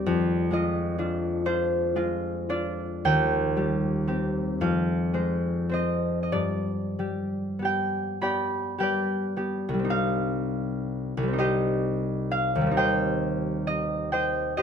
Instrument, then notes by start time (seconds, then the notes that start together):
harp
Already playing: D#2 G3 C4 G4 C5 D5 D#5
0.06 F2
0.51 G#3 F4 D#5
0.98 D4 F4
1.46 D4 F4 C5
1.96 G#3 F4
2.49 D4 F4 D5
3.05 D#2 G5
3.56 G3 G4
4.07 C4 G4
4.61 F2 F5
5.14 G#3 C5
5.69 C4 C5
5.74 D#5
6.23 D#5
6.32 G2 D5
6.99 G3 G4
7.59 B3 G4
7.65 G5
8.21 B3 G4 D5 G5 B5
8.78 G3 G4 B4 G5
8.83 D5
9.36 B3 G4
9.69 C2
9.74 G3
9.79 C4
9.84 D#4
9.90 F5
11.17 C2
11.23 G3
11.28 C4
11.33 D#4
11.38 G4 C5 D#5
12.31 F5
12.55 D#2
12.61 G3
12.66 C4
12.71 D#4
12.77 C5 D#5 G5
13.67 D#5
14.12 C5 D#5 G5
14.57 G4 C5 D#5